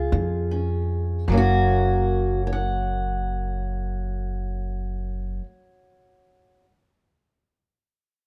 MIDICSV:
0, 0, Header, 1, 3, 480
1, 0, Start_track
1, 0, Key_signature, 6, "major"
1, 0, Tempo, 768246
1, 803, Time_signature, 12, 3, 24, 8
1, 804, Tempo, 795756
1, 5013, End_track
2, 0, Start_track
2, 0, Title_t, "Steel-string acoustic guitar"
2, 0, Program_c, 0, 25
2, 0, Note_on_c, 0, 65, 48
2, 0, Note_on_c, 0, 68, 89
2, 76, Note_on_c, 0, 49, 74
2, 321, Note_on_c, 0, 61, 47
2, 507, Note_off_c, 0, 49, 0
2, 774, Note_off_c, 0, 65, 0
2, 776, Note_off_c, 0, 61, 0
2, 797, Note_on_c, 0, 42, 65
2, 804, Note_off_c, 0, 68, 0
2, 808, Note_on_c, 0, 54, 58
2, 822, Note_on_c, 0, 58, 64
2, 832, Note_on_c, 0, 61, 61
2, 857, Note_on_c, 0, 66, 96
2, 1482, Note_off_c, 0, 66, 0
2, 1515, Note_off_c, 0, 61, 0
2, 1517, Note_on_c, 0, 73, 74
2, 1551, Note_on_c, 0, 78, 67
2, 3295, Note_off_c, 0, 42, 0
2, 3305, Note_off_c, 0, 54, 0
2, 3319, Note_off_c, 0, 58, 0
2, 4014, Note_off_c, 0, 73, 0
2, 4049, Note_off_c, 0, 78, 0
2, 5013, End_track
3, 0, Start_track
3, 0, Title_t, "Upright bass"
3, 0, Program_c, 1, 32
3, 76, Note_on_c, 1, 41, 92
3, 779, Note_off_c, 1, 41, 0
3, 800, Note_on_c, 1, 30, 89
3, 3273, Note_off_c, 1, 30, 0
3, 5013, End_track
0, 0, End_of_file